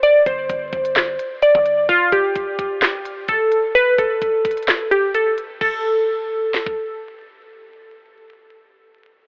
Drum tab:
CC |--------------------------------|--------------------------------|--------------------------------|x-------------------------------|
HH |x---x---x---x-x-x---x---x---x---|x---x---x---x---x---x---x---x---|x---x---x---xxxxx---x---x---x---|--------------------------------|
CP |----------------x---------------|----------------x---------------|----------------x---------------|--------------------------------|
SD |----------------o---------------|----------------o---------------|----------------o---------------|----------------o---------------|
BD |----o---o---o-------------o-----|o---o---o---o-----------o-------|----o---o---o-------------------|o-----------------o-------------|

CC |--------------------------------|
HH |--------------------------------|
CP |--------------------------------|
SD |--------------------------------|
BD |--------------------------------|